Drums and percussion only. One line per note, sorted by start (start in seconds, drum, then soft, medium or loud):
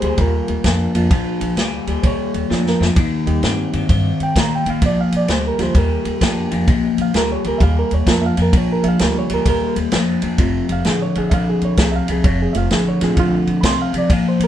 0.02 ride medium
0.18 kick loud
0.18 ride medium
0.48 ride medium
0.64 kick medium
0.64 snare loud
0.64 ride medium
0.95 ride medium
1.11 kick loud
1.11 ride loud
1.41 ride medium
1.57 snare medium
1.57 ride medium
1.87 ride medium
2.03 kick loud
2.03 ride medium
2.34 ride medium
2.51 snare medium
2.67 snare medium
2.82 snare loud
2.96 kick loud
2.96 ride medium
3.27 ride medium
3.43 snare medium
3.43 ride medium
3.73 ride medium
3.89 kick loud
3.89 ride medium
4.20 ride soft
4.36 kick medium
4.36 snare loud
4.36 ride loud
4.66 ride medium
4.82 kick loud
4.82 ride medium
5.12 ride medium
5.28 snare medium
5.28 ride medium
5.59 snare soft
5.59 ride medium
5.75 kick loud
5.75 ride medium
6.05 ride medium
6.21 kick medium
6.21 snare loud
6.21 ride loud
6.51 ride medium
6.68 kick loud
6.68 ride medium
6.98 ride medium
7.14 snare loud
7.14 ride medium
7.44 ride medium
7.60 kick loud
7.60 ride medium
7.91 ride medium
8.07 kick medium
8.07 snare loud
8.07 ride medium
8.37 ride medium
8.53 kick loud
8.53 ride medium
8.84 ride medium
8.99 snare medium
8.99 ride medium
9.30 ride medium
9.46 kick loud
9.46 ride medium
9.76 ride medium
9.92 snare loud
9.92 ride medium
10.22 ride medium
10.38 kick loud
10.38 ride medium
10.69 ride medium
10.85 snare medium
10.85 ride medium
11.15 ride medium
11.31 kick medium
11.31 ride medium
11.61 ride soft
11.77 kick medium
11.77 snare loud
11.77 ride medium
12.08 ride medium
12.24 kick loud
12.24 ride medium
12.55 ride medium
12.71 snare loud
12.71 ride medium
13.01 snare soft
13.01 ride medium
13.17 kick loud
13.17 ride medium
13.47 ride medium
13.63 kick medium
13.63 snare loud
13.63 ride loud
13.94 ride medium
14.10 kick loud
14.10 ride loud
14.40 ride medium